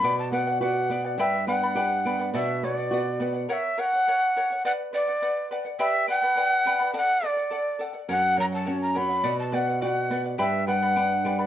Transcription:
Already playing: quena B5
0.03 nylon-string guitar B2, charango B4 D5 F#5
0.19 quena A5
0.32 nylon-string guitar B3, charango B4 D5 F#5, quena F#5
0.47 charango D5 F#5
0.61 nylon-string guitar F#4, charango B4 D5 F#5, quena F#5
0.90 nylon-string guitar B3, charango B4 D5 F#5
1.05 charango D5 F#5
1.18 nylon-string guitar G2, charango G4 B4 D5 G5 B5, quena E5
1.47 nylon-string guitar B3, charango B4 D5 G5 B5, quena F#5
1.63 charango B4 D5 B5
1.75 nylon-string guitar G4, charango B4 D5 G5 B5
2.05 nylon-string guitar B3, charango B4 D5 G5 B5
2.19 charango B4 D5 B5
2.34 nylon-string guitar B2, charango B4 D5 F#5, quena E5
2.63 nylon-string guitar B3, charango B4 D5 F#5, quena C#5
2.75 quena D5, charango F#5
2.79 charango D5
2.91 nylon-string guitar F#4, charango B4 D5 F#5
3.20 nylon-string guitar B3, charango B4 D5 F#5
3.34 charango D5 F#5
3.49 charango A#4 C#5 F#5, quena F#5
3.53 quena E5
3.77 charango A#4 C#5 F#5, quena F#5
3.93 charango C#5 F#5
4.07 charango A#4 C#5 F#5
4.36 charango A#4 C#5 F#5
4.50 charango C#5 F#5
4.65 charango B4 D5 F#5, quena F#5
4.93 charango B4 D5 F#5, quena D5
5.08 charango D5 F#5
5.22 charango B4 D5 F#5
5.51 charango B4 D5 F#5
5.65 charango D5 F#5
5.79 charango G4 B4 D5 G5 B5, quena E5
6.07 charango B4 D5 G5 B5, quena F#5
6.22 charango B4 D5 B5
6.36 charango B4 D5 G5 B5
6.66 charango B4 D5 G5 B5
6.79 charango B4 D5 B5
6.93 charango A4 D5 F#5
6.97 quena F#5
7.22 charango A4 D5 F#5, quena D5
7.37 charango D5 F#5
7.51 charango A4 D5 F#5
7.79 charango A4 D5 F#5
7.93 charango D5 F#5
8.09 nylon-string guitar F#2, charango A#4 C#5 F#5, quena F#5
8.36 nylon-string guitar F#3, charango A#4 C#5 F#5, quena A#5
8.52 charango C#5 F#5, quena A5
8.65 nylon-string guitar C#4, charango A#4 C#5 F#5
8.82 quena A#5
8.94 nylon-string guitar F#3, charango A#4 C#5 F#5, quena B5
9.09 charango C#5 F#5
9.24 nylon-string guitar B2, charango B4 D5 F#5
9.39 quena A5
9.52 nylon-string guitar B3, charango B4 D5 F#5, quena F#5
9.67 charango D5 F#5
9.81 nylon-string guitar F#4, charango B4 D5 F#5, quena G5
9.87 quena F#5
10.10 nylon-string guitar B3, charango B4 D5 F#5
10.24 charango D5 F#5
10.38 nylon-string guitar G2, charango G4 B4 D5 G5 B5, quena E5
10.67 nylon-string guitar G3, charango B4 D5 G5 B5, quena F#5
10.83 charango B4 D5 B5
10.96 nylon-string guitar D4, charango B4 D5 G5 B5
11.24 nylon-string guitar G3, charango B4 D5 G5 B5
11.39 charango B4 D5 B5

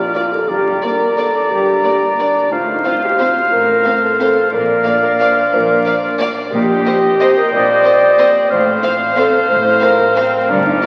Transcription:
Already playing: harp A#2 F3 A#3 F4 A#4 D5, french horn section F4, clarinet D5, oboe F5, flute A#5
0.14 viola section A#3, french horn section F4, harp A#4, violin section D5
0.32 harp A#3, french horn section A4
0.49 double bass section G1, harp G2, cello section G2, french horn section G4, oboe D5, clarinet D5, flute A#5
0.66 harp D4
0.83 viola section A#3, french horn section A#4, harp A#4, violin section D5
1.00 harp D5
1.16 viola section A#3, french horn section A4, violin section D5
1.34 harp D4
1.49 double bass section G1, harp G2, cello section G2, french horn section G4
1.66 harp D3
1.83 viola section A#3, harp A#4, violin section D5
2.02 harp D5
2.18 viola section A#3, french horn section D4, harp A#4, violin section D5
2.36 harp D4
2.51 double bass section A1, cello section A2, harp A2, french horn section F4, clarinet C5, flute F5, oboe F5
2.68 harp C4, french horn section D#4
2.85 viola section C4, french horn section F4, harp F4, violin section C5 F5
3.04 french horn section G4
3.18 viola section C4, french horn section F4, harp F4, violin section C5 F5
3.36 harp C4
3.51 double bass section A1, harp A2, cello section A2, french horn section A#4
3.68 harp A3
3.85 viola section C4, harp F4, violin section C5 F5
4.02 french horn section A4, harp F5
4.19 viola section C4, harp F4, french horn section A4, violin section C5 F5
4.35 harp C4
4.52 double bass section A#1, harp A#2, cello section A#2, french horn section A#4, clarinet D5, oboe F5, flute F5
4.68 harp D4
4.84 viola section A#3, harp F4, violin section D5 F5, french horn section D5
5.02 french horn section A#4
5.19 viola section A#3, harp F4, french horn section C5, violin section D5 F5
5.53 double bass section A#1, harp A#2, cello section A#2, french horn section A#4
5.69 harp F3
5.85 viola section A#3, harp F4, violin section D5 F5
6.19 viola section A#3, harp F4, violin section D5 F5
6.38 harp D4
6.52 double bass section A#1, cello section A#2, timpani A#2, harp A#2, french horn section G4, oboe D#5, flute G5
6.70 harp C4
6.86 viola section C4, violin section C5 D#5
7.04 harp D#5
7.20 viola section C4, harp G4, clarinet C5, violin section C5 D#5
7.36 harp C4, french horn section A#4
7.52 double bass section A#1, harp A#2, cello section A#2, french horn section D5
7.69 harp A#3
7.84 viola section C4, harp G4, violin section C5 D#5
8.18 viola section C4, harp G4, violin section C5 D#5
8.37 harp C4
8.50 double bass section A1, cello section A2, harp A2, french horn section C5, clarinet C5, flute F5, oboe F5
8.67 harp C4
8.82 viola section C4, harp F4, violin section C5 F5
9.16 viola section C4, harp F4, french horn section A4, violin section C5 F5
9.49 double bass section A1, harp A2, cello section A2, french horn section C5
9.65 harp A3
9.81 viola section C4, harp F4, french horn section A#4, violin section C5 F5
10.15 french horn section C4, viola section C4, harp F4, violin section C5 F5
10.34 harp C4
10.48 double bass section G1, harp G2, cello section G2, french horn section D4, clarinet D5, oboe F5, flute A#5
10.64 harp A#3, french horn section D#4
10.82 viola section A#3, french horn section F4, harp F4, violin section D5 F5

